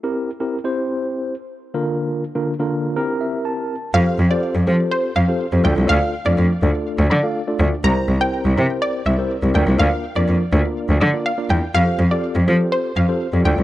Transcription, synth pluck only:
\new Staff \with { instrumentName = "Synth pluck" } { \time 4/4 \key f \major \tempo 4 = 123 r1 | r1 | f''8 r16 d''8. r8 c''8 f''16 r8. g''16 r16 | f''8 r16 d''8. r4 d''8 r4 |
bes''8 r16 g''8. r8 d''8 e''16 r8. g''16 r16 | f''8 r16 d''8. r4 d''8 f''16 r16 g''16 r16 | f''8 r16 d''8. r8 c''8 f''16 r8. g''16 r16 | }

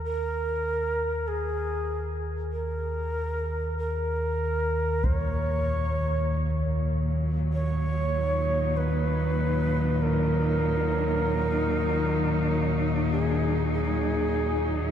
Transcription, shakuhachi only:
\new Staff \with { instrumentName = "Shakuhachi" } { \time 4/4 \key ees \minor \tempo 4 = 48 bes'4 aes'4 bes'4 bes'4 | des''4. r8 des''4 ces''4 | bes'2~ bes'8 aes'8 aes'4 | }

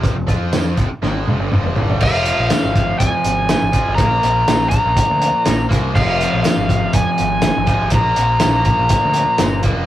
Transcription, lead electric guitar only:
\new Staff \with { instrumentName = "Lead electric guitar" } { \time 4/4 \key f \dorian \tempo 4 = 122 r1 | f''2 aes''2 | bes''4. bes''2 r8 | f''2 aes''2 |
bes''4. bes''2 r8 | }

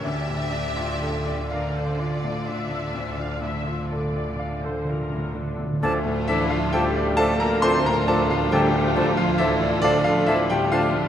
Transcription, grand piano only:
\new Staff \with { instrumentName = "Grand piano" } { \time 12/8 \key d \minor \tempo 4. = 44 << { r1. | r8 <e' e''>16 <f' f''>16 <g' g''>8 <a' a''>16 <bes' bes''>16 <c'' c'''>16 <bes' bes''>16 <a' a''>16 <f' f''>16 <g' g''>8. <f' f''>16 <e' e''>8 <d' d''>16 <f' f''>16 <e' e''>16 <g' g''>16 <f' f''>8 | } \\ { d,16 a,16 d'16 f'16 a'16 d''16 f''16 a'16 f'16 a,16 d'16 a,16 d,16 d'16 a,16 f'16 a'16 d''16 f''16 a'16 f'16 a,16 d'16 a,16 | d,16 a,16 d'8 a'16 d''16 f''16 a'16 f'16 a,16 d'16 a,16 d,16 d'16 a,8 a'16 d''16 f''16 a'16 f'16 a,16 d'16 a,16 | } >> }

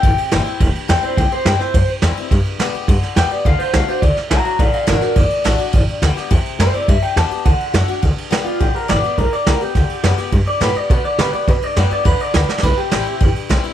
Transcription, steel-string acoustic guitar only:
\new Staff \with { instrumentName = "Steel-string acoustic guitar" } { \time 4/4 \key g \major \tempo 4 = 210 << { r4 <e g c' e'>8 <c' e'>8 r4 <e g c' e'>8 <c' e'>8 | r4 <e g c' e'>8 <c' e'>8 r4 <e g c' e'>8 <c' e'>8 | r4 <d g b g'>8 <b g'>8 r4 <d g b g'>8 <b g'>8 | r4 <d a d' fis'>8 <d' fis'>8 r4 <d a d' fis'>8 <d' fis'>8 |
r4 <d a d' fis'>8 <d' fis'>8 r4 <d a d' fis'>8 <d' fis'>8 | r4 <d g b g'>8 <b g'>8 r4 <e g c' e'>8 <c' e'>8 | r4 <d g b g'>8 <b g'>8 r4 <d a d' fis'>8 <d' fis'>8 | r4 <d g b g'>8 <b g'>8 r4 <d g b g'>8 <b g'>8 |
r4 <d g b g'>8 <b g'>8 r4 <d g b g'>8 <b g'>8 | r4 <d g b g'>8 g'8 r4 <d g b g'>8 <b g'>8 | r4 <d g b g'>8 <b g'>8 r4 <d g b g'>8 <b g'>8 | r4 <e g c' e'>8 <c' e'>8 r4 <e g c' e'>8 <c' e'>8 | } \\ { c2 g,2 | c2 g,2 | g,2 d2 | d2 a,2 |
d2 a,2 | g,2 c2 | g,2 d2 | g,2 d2 |
g,2 d2 | g,2 d2 | g,2 d2 | c2 g,2 | } >> }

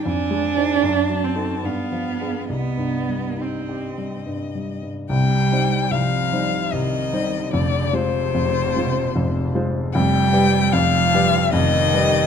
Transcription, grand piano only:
\new Staff \with { instrumentName = "Grand piano" } { \clef bass \time 3/4 \key c \minor \tempo 4 = 74 \tuplet 3/2 { f,8 aes8 <ees' c''>8 fis,8 fis8 <dis' a'>8 g,8 f8 <d' aes'>8 } | \tuplet 3/2 { c,8 g,8 g8 ees'8 g'8 g8 g,8 g8 g,8 } | <c, c>8 <g ees' c''>8 <c, c>8 <g ees' c''>8 <c, c>8 <g ees' c''>8 | <f,, f,>8 <aes f' c''>8 <f,, f,>8 <aes f' c''>8 <f,, f,>8 <aes f' c''>8 |
<f,, f,>8 <g g' b'>8 <f,, f,>8 <g g' b'>8 <f,, f,>8 <g g' b'>8 | }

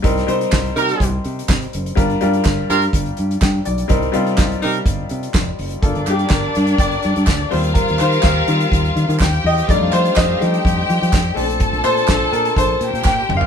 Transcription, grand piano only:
\new Staff \with { instrumentName = "Grand piano" } { \time 4/4 \key g \minor \tempo 4 = 124 << { r1 | r2. g''8 d''8~ | d''8 r2. r8 | r8 g'8 bes'4 d''8 r4 c''8 |
bes'8 c''8 f''4 r4. ees''8 | d''8 c''8 ees''4 r2 | r8 c''4 bes'8 c''8 r8 \tuplet 3/2 { g''4 f''8 } | } \\ { <g c' ees' bes'>8 <g c' ees' c''>4. r2 | <g d' f' bes'>8 <g d' f' bes'>4. r2 | <g c' ees' bes'>8 <g c' ees' f'>4. r2 | <bes f' a'>4. r2 <g c' f'>8~ |
<g c' f'>4 r8 <g c' f'>8 r2 | <g a d' ees'>8 r4 <g a d' ees'>8 r4. <a c' d'>8~ | <a c' d'>2.~ <a c' d'>8 r8 | } >> }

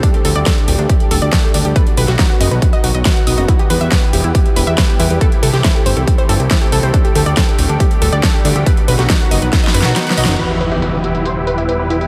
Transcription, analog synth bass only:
\new Staff \with { instrumentName = "Analog synth bass" } { \clef bass \time 4/4 \key e \minor \tempo 4 = 139 r8 d,16 d,16 r8 d,,16 d,16 r8 d,,16 d,16 r8 d,16 d,16 | r8 b,,16 b,,16 r8 fis,,16 b,,16 r8 b,,16 b,,16 r8 b,,16 fis,,16 | r8 e,16 e,16 r8 e,,16 e,16 r8 e,,16 e,16 r8 e,16 e,16 | r8 c,16 c,16 r8 g,,16 c,16 r8 g,,16 c,16 r8 c,16 c,16 |
r8 d,16 d,16 r8 d,,16 d,16 r8 d,,16 d,16 r8 d,16 d,16 | r8 b,,16 b,,16 r8 fis,,16 b,,16 r8 fis,,16 b,,16 r8 b,,16 fis,,16 | e,1 | }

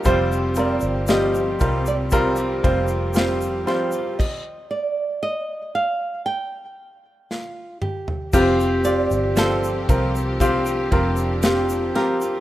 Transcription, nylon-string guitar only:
\new Staff \with { instrumentName = "Nylon-string guitar" } { \time 4/4 \key f \mixolydian \tempo 4 = 58 c''8 d''8 ees''8. d''16 c''4. c''8 | ees''8 d''8 ees''8 f''8 g''4 f'8 g'8 | c''8 d''8 c''4 c''4 g'8 bes'8 | }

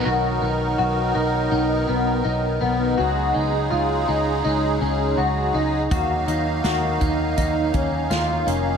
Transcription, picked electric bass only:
\new Staff \with { instrumentName = "Picked electric bass" } { \clef bass \time 4/4 \key b \lydian \tempo 4 = 82 b,,8 b,,8 b,,8 b,,8 b,,8 b,,8 b,,8 b,,8 | cis,8 cis,8 cis,8 cis,8 cis,8 cis,8 cis,8 cis,8 | dis,8 dis,8 dis,8 dis,8 dis,8 dis,8 dis,8 eis,,8 | }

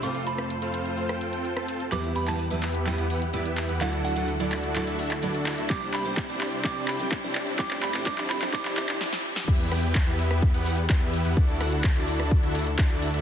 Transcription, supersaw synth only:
\new Staff \with { instrumentName = "Supersaw synth" } { \time 4/4 \key e \minor \tempo 4 = 127 <c' f' a' c'' f''>8 <c' f' a' c'' a''>8 r16 <c' f' a' c'' f''>4 <c' f' a' c'' g''>16 <c' f' a' c'' g''>8. <c' f' a' c'' a''>16 <c' f' a' c'' a''>16 r16 | <b e' g' b' e''>8 <b e' g' b' g''>8 r16 <b e' g' b' e''>4 <b e' g' b' fis''>8 r16 <b e' g' b' e''>8. <b e' g' b' fis''>16 | <d' e' fis' a' d''>8 <d' e' fis' a' fis''>8 r16 <d' e' fis' a' d''>4 <d' e' fis' a' e''>8 r16 <d' e' fis' a' d''>8. <d' e' fis' a' e''>16 | r8 <d' e' g' c'' g''>8 r16 <d' e' g' c'' d''>8. g'8 <d' e' g' c'' g''>8 r16 <d' e' g' c'' d''>8. |
<e' g'>8 <d' e' g' c'' g''>8 <d' e' g' c'' d''>8 <d' e' g' c'' g''>8 <d' e' g' c''>8 <d' e' g' c'' d''>8 r4 | <b e' g' b' e''>8 <b e' g' b' g''>8 r16 <b e' g' b' e''>4 <b e' g' b' fis''>8 r16 <b e' g' b' e''>8. <b e' g' b' fis''>16 | <d' e' fis' a' d''>8 <d' e' fis' a' fis''>8 r16 <d' e' fis' a' d''>4 <d' e' fis' a' e''>8 r16 <d' e' d''>8. <d' e' fis' a' e''>16 | }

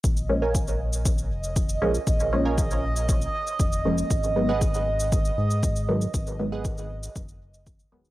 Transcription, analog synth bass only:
\new Staff \with { instrumentName = "Analog synth bass" } { \clef bass \time 4/4 \key bes \phrygian \tempo 4 = 118 bes,,2~ bes,,8 f,,4 bes,,8 | bes,,2~ bes,,8 r8 f,,4 | aes,,2~ aes,,8 aes,4. | aes,,2 ges,,4. ees,,8 | }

